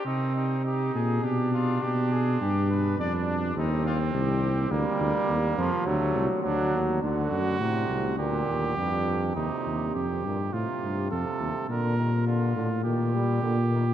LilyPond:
<<
  \new Staff \with { instrumentName = "Trumpet" } { \time 4/4 \key c \minor \tempo 4 = 103 ees'8 ees'8 g'8 aes'8 g'8 f'8 g'8 aes'8 | g'8 b'8 d''8 d'8 ees'8 f'8 g'4 | r1 | r1 |
r1 | r1 | }
  \new Staff \with { instrumentName = "Trumpet" } { \time 4/4 \key c \minor c'4 ees'4 d'2~ | d'4 d'4 c'2 | bes2 a4 d'8 r8 | fis'2 g'2 |
ees'4 g'4 f'4 a'4 | bes'4 f'4 g'2 | }
  \new Staff \with { instrumentName = "Trombone" } { \clef bass \time 4/4 \key c \minor r1 | r1 | g4. f8 fis4 fis4 | d4 c4 bes,4 g,4 |
c4. bes,8 c4 c4 | d8 ees8 d8 d8 ees8 g8 d8 ees8 | }
  \new Staff \with { instrumentName = "Tuba" } { \clef bass \time 4/4 \key c \minor c4. bes,8 b,4 b,4 | g,4 f,4 ees,4 c,4 | d,8 d,8 ees,8 f,8 d,8 c,8 d,8 ees,8 | d,8 fis,8 a,8 c,8 d,8 ees,8 f,4 |
ees,8 ees,8 f,8 g,8 a,8 g,8 f,8 ees,8 | bes,4. a,8 bes,4 bes,4 | }
>>